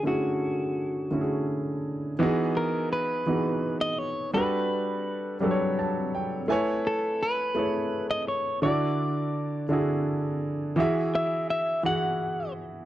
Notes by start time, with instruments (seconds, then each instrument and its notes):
Already playing: grand piano D3 A3 C#4 E4 F#4
0.03 grand piano D3 A3 C#4 E4, clean electric guitar F#4
0.08 grand piano G#4
1.11 grand piano D3 A3 C#4 E4 F#4
1.21 grand piano G#4
2.19 grand piano E3 B3 D#4 F#4 G#4
2.57 clean electric guitar A#4
2.93 clean electric guitar B4
3.26 grand piano E3 B3 D#4 F#4 G#4
3.81 clean electric guitar D#5
3.99 clean electric guitar C#5
4.33 grand piano G3 D4 F#4 A4 B4, clean electric guitar B4
5.40 grand piano F#3 G3 D4 A4 B4
5.51 grand piano C#5
5.79 grand piano A5
6.15 grand piano G5
6.48 grand piano A3 E4 B4 C#5 G#5
6.87 clean electric guitar A4
7.23 clean electric guitar B4
7.55 grand piano A3 E4 G#4 B4 C#5
8.11 clean electric guitar D#5
8.28 clean electric guitar C#5
8.62 grand piano D3 D4 E4 F#4 D5, clean electric guitar D5
9.69 grand piano D3 D4 E4 F#4
9.73 grand piano G#4
10.76 grand piano E3 E4 F#4 G#4
10.80 grand piano E5
11.15 clean electric guitar E5
11.50 clean electric guitar E5
11.83 grand piano E3 E4 F#4 G#4, clean electric guitar F#5
11.87 grand piano F#5